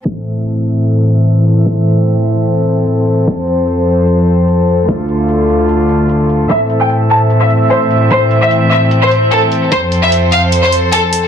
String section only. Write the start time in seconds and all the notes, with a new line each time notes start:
0.05 A2 E3 C4 A4 E5
3.28 F2 F3 C5
4.88 D2 D3 A3 F4
6.50 A2 E3 C4 E5
9.72 F2 F3 A4 C5